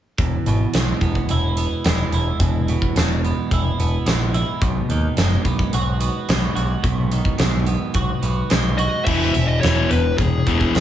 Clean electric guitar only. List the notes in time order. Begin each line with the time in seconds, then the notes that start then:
0.19 E2
0.48 B2
0.75 G#3
1.03 B3
1.31 E4
1.58 B3
1.86 G#3
2.14 E4
2.41 E2
2.69 B2
2.97 G#3
3.25 B3
3.54 E4
3.80 B3
4.06 G#3
4.34 E4
4.62 B2
4.91 D#3
5.19 G#3
5.46 B3
5.74 F#4
6.01 B3
6.29 G#3
6.55 F#4
6.84 B2
7.12 D#3
7.38 G#3
7.67 B3
7.95 F#4
8.22 B3
8.50 G#3
8.79 F#4
9.07 E2 B2 E3
9.35 E2 B2
9.63 E2 B2 E3
9.90 E2 B2
10.19 E2 B2
10.46 E2 B2 E3
10.75 E2 B2